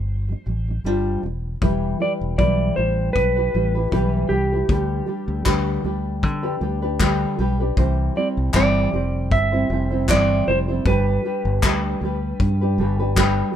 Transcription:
Already playing: fingered electric bass G1, nylon-string guitar G3 D4, electric slide guitar C5
0.29 nylon-string guitar G3 D4
0.46 fingered electric bass A1, nylon-string guitar G3 D4
0.68 nylon-string guitar G3 D4
0.84 fingered electric bass G1, nylon-string guitar G3 D4 F4 C5
1.23 fingered electric bass E1, nylon-string guitar G3 D4
1.62 fingered electric bass E1, nylon-string guitar E3 G3 E4 G4 B4, kick
2.00 nylon-string guitar G3 E4 G4 B4, electric slide guitar D5
2.21 fingered electric bass E1
2.38 fingered electric bass B1, nylon-string guitar E3 G3 E4 G4 B4, electric slide guitar D5, kick
2.76 fingered electric bass A1, nylon-string guitar G3 E4 G4, electric slide guitar C5
3.13 fingered electric bass B1, electric slide guitar B4, kick
3.36 nylon-string guitar E4 G4 B4
3.54 fingered electric bass A1, nylon-string guitar G3 E4 G4 B4
3.75 nylon-string guitar E4 G4 B4
3.91 fingered electric bass B1, nylon-string guitar E3 G3 E4 G4 B4, kick
4.29 fingered electric bass C2, nylon-string guitar G3 E4 G4, electric slide guitar G4
4.33 nylon-string guitar B4
4.53 nylon-string guitar E4 G4 B4
4.69 fingered electric bass D2, nylon-string guitar D3 G3 D4 G4 B4, kick
5.06 nylon-string guitar G3 D4 G4 B4
5.28 fingered electric bass D2
5.45 fingered electric bass D2, nylon-string guitar D3 G3 D4 G4 B4, kick, clap
5.84 fingered electric bass D2, nylon-string guitar G3 D4 G4 B4
6.23 fingered electric bass D3, kick
6.43 nylon-string guitar D4 G4 B4
6.60 fingered electric bass D2, nylon-string guitar G3 D4 G4 B4
6.82 nylon-string guitar D4 G4 B4
6.99 nylon-string guitar D3 G3 D4 G4 B4, kick, clap
7.39 fingered electric bass B1, nylon-string guitar G3 D4 G4 B4
7.60 nylon-string guitar D4 G4 B4
7.77 fingered electric bass C2, nylon-string guitar C3 E3 G3 C4 E4 C5, kick
8.15 nylon-string guitar G3 C4 E4 C5, electric slide guitar D5
8.37 fingered electric bass C2
8.53 fingered electric bass G1, nylon-string guitar C3 E3 G3 C4 E4 C5, electric slide guitar D5, kick, clap
8.92 fingered electric bass F1, nylon-string guitar G3 C4 E4 C5
9.31 fingered electric bass G1, electric slide guitar E5, kick
9.52 nylon-string guitar G3 C4 E4 C5
9.70 fingered electric bass F1, nylon-string guitar G3 C4 E4 C5
9.90 nylon-string guitar G3 C4 E4 C5
10.08 fingered electric bass G1, nylon-string guitar C3 E3 G3 C4 E4 C5, electric slide guitar D5, kick, clap
10.47 fingered electric bass F1, nylon-string guitar G3 C4 E4 C5, electric slide guitar C5
10.68 nylon-string guitar G3 C4 E4 C5
10.86 fingered electric bass G1, nylon-string guitar G3 D4 G4 B4, electric slide guitar B4, kick
11.24 nylon-string guitar G3 D4 G4 B4
11.45 fingered electric bass G1
11.63 fingered electric bass D2, nylon-string guitar G3 D4 G4 B4, kick, clap
12.01 fingered electric bass D2, nylon-string guitar G3 D4 G4 B4
12.40 fingered electric bass G2, kick
12.61 nylon-string guitar D4 G4 B4
12.78 fingered electric bass G1, nylon-string guitar G3 D4 G4 B4
12.99 nylon-string guitar D4 G4 B4
13.16 nylon-string guitar G3 D4 G4 B4, kick, clap

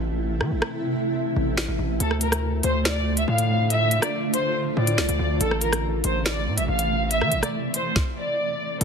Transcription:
Already playing: 808-style bass A1, ambient pad C3 A3 E4
0.41 808-style bass E3, cross-stick
0.51 808-style bass A1
0.62 cross-stick
1.36 808-style bass A1
1.58 finger snap, snare
1.68 808-style bass A1
1.79 808-style bass A1
2.00 808-style bass D2, ambient pad D3 F4, violin section A4, closed hi-hat
2.11 cross-stick
2.21 violin section A#4, closed hi-hat
2.32 cross-stick, closed hi-hat
2.63 808-style bass D2, violin section C5, closed hi-hat
2.85 violin section D5, finger snap, snare, closed hi-hat
3.17 violin section E5, closed hi-hat
3.28 808-style bass A2, violin section F5
3.38 closed hi-hat
3.70 violin section E5, closed hi-hat
3.91 closed hi-hat
4.02 violin section D5, cross-stick, closed hi-hat
4.34 violin section C5, closed hi-hat
4.77 808-style bass A2, violin section D5
4.87 closed hi-hat
4.98 808-style bass C2, finger snap, snare
5.09 808-style bass D2, closed hi-hat
5.19 808-style bass D2
5.41 808-style bass A1, ambient pad C3 E3 A3, violin section A4, closed hi-hat
5.51 cross-stick
5.61 violin section A#4, closed hi-hat
5.73 cross-stick, closed hi-hat
6.04 808-style bass A1, violin section C5, closed hi-hat
6.25 violin section D5, finger snap, snare, closed hi-hat
6.47 808-style bass A2
6.58 808-style bass A1, violin section E5, closed hi-hat
6.68 808-style bass A1, violin section F5
6.79 closed hi-hat
7.11 violin section E5, closed hi-hat
7.21 808-style bass E3, cross-stick
7.32 808-style bass A1, closed hi-hat
7.43 violin section D5, cross-stick, closed hi-hat
7.74 violin section C5, closed hi-hat
7.96 kick, snare
8.17 violin section D5
8.81 808-style bass D2, violin section A4, closed hi-hat

